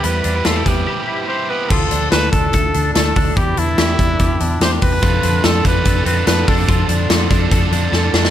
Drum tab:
CC |----------------|x---------------|----------------|----------------|
HH |x-x-x-x---------|--x-x-x-x-x-x-o-|x-x-x-x-x-x-x-o-|x-x-x-x-x-x-x-o-|
SD |----o-----------|----o-------o---|----o-------o---|----o-------o---|
BD |------o---------|o-----o-o-----o-|o-----o-o-----o-|o-----o-o-----o-|

CC |----------------|
HH |x-x-x-x-x-x-----|
SD |----o-------o-oo|
BD |o-----o-o-------|